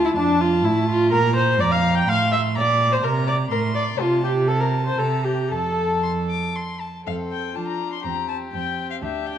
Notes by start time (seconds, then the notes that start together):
Already playing: D2 A5
0.04 E4
0.16 F2 D4 A5
0.41 F4
0.64 A2 E4
0.88 F4
1.11 A#2 A#4 A#5
1.36 C5
1.59 F2 D5 A#5
1.72 F5
1.95 G5
2.08 A2 F5 C6
2.32 E5
2.55 A#2 D5 A#5
2.91 C5
3.03 C3 A#4 A#5
3.27 D5
3.51 A2 A#4 C6
3.75 D5
3.99 C3 F4 A5
4.23 G4
4.48 A4 A5
4.60 A#4
4.86 C5
4.98 C3 A4 A#5
5.24 G4
5.50 F2 A4 A5
6.03 C6
6.30 D6
6.56 C6
6.81 A5
7.06 F2 C4 A4 F5
7.31 G5
7.55 F3 D4 F4 A5
7.67 A#5
7.93 C6
8.05 E2 C4 G4 A#5
8.28 A5
8.53 F2 C4 G5
8.91 F5
9.02 D2 D4 G4 E5
9.26 G5